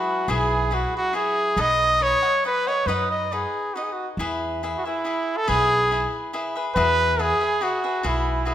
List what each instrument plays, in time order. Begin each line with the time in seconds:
Already playing: cavaquinho E4 G#4 B4 E5, trumpet F#4, harp B4
0.28 upright bass B1, cavaquinho E4 G#4 B4 E5, trumpet G#4
0.71 cavaquinho E4 G#4 B4 E5, trumpet F#4
0.97 trumpet F#4
1.13 cavaquinho E4 G#4 B4 E5, trumpet G#4
1.57 upright bass B1, cavaquinho D#4 B4 D#5 F#5, trumpet D#5
2.00 cavaquinho D#4 B4 D#5 F#5, trumpet C#5
2.22 cavaquinho B4 D#5 F#5
2.44 cavaquinho D#4 B4 D#5 F#5, trumpet B4
2.67 cavaquinho B4 D#5 F#5, trumpet C#5
2.86 upright bass F#2, cavaquinho D#4 B4 D#5 F#5, trumpet B4
3.11 trumpet D#5
3.32 cavaquinho D#4 B4 D#5 F#5, trumpet G#4
3.74 cavaquinho D#4 B4 D#5 F#5, trumpet F#4
3.83 trumpet G#4
3.92 trumpet F#4
4.17 upright bass E2, cavaquinho E4 G#4 B4 E5
4.63 cavaquinho E4 G#4 B4 E5
4.78 trumpet F#4
4.85 trumpet E4, cavaquinho G#4 B4 E5
5.04 cavaquinho E4 G#4 B4 E5
5.37 trumpet A4
5.47 upright bass B1, cavaquinho E4 G#4 B4 E5, trumpet G#4
5.91 cavaquinho E4 G#4 B4 E5
6.33 cavaquinho E4 G#4 B4 E5
6.56 cavaquinho G#4 B4 E5
6.75 upright bass E2, cavaquinho F#4 G#4 B4 E5, trumpet B4
7.19 cavaquinho F#4 G#4 B4 E5, trumpet G#4
7.41 cavaquinho G#4 B4 E5
7.61 cavaquinho F#4 G#4 B4 E5, trumpet F#4
7.84 cavaquinho G#4 B4 E5
8.03 upright bass B1, trumpet E4, cavaquinho F#4 G#4 B4 E5
8.45 cavaquinho F#4 G#4 B4 E5